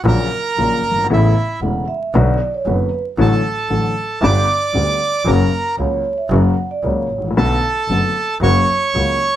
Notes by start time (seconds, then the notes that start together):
0.05 A#1 A#2 C#3 F#3 A#3 F#4 A#4 A#5
0.57 A#1 A#2 C#3 F#3 A#3 F#4
0.83 G1
0.91 F#1
0.98 G1
1.04 G#1
1.09 A1 A2 C#3 A3 B3 E4 E5
1.62 E1 E2 C#3 A3 B3 E4 F#5
1.88 E5
2.14 B1 B2 D3 F#3 B3 F#4 D5
2.54 C#5
2.66 F#1 F#2 D3 F#3 B3 F#4 B4
3.18 A1 A2 D3 F#3 A3 F#4 A4 A5
3.69 A1 A2 D3 F#3 A3 F#4
4.22 G1 G2 D3 G3 B3 G4 D5 D6
4.74 D2 D3 G3 B3 G4
5.26 F#1 F#2 C#3 F#3 A#3 F#4 A#4 A#5
5.78 C#2 C#3 F#3 A#3 F#4 C#5
6.18 E5
6.30 F#1 F#2 C#3 F#3 A#3 F#4 F#5
6.71 D5
6.83 C#2 C#3 F#3 A#3 F#4 C#5
7.09 A1
7.18 G#1
7.24 A1
7.31 A#1
7.36 B1 B2 D3 A3 B3 F#4 A4 A5
7.88 F#1 F#2 D3 A3 B3 F#4
8.41 F#1 F#2 C#3 F#3 A#3 F#4 C#5 C#6
8.94 C#2 C#3 F#3 A#3 F#4